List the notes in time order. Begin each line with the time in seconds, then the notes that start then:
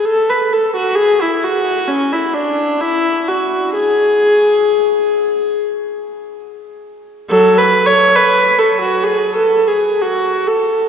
0.05 A4
0.29 B4
0.53 A4
0.76 F#4
0.95 G#4
1.21 E4
1.43 F#4
1.88 C#4
2.12 E4
2.33 D4
2.80 E4
3.28 F#4
3.74 G#4
7.30 F#3 A4
7.57 B4
7.86 C#5
8.16 B4
8.58 A4
8.81 F#4
9.04 G#4
9.36 A4
9.67 G#4
10.01 F#4
10.47 A4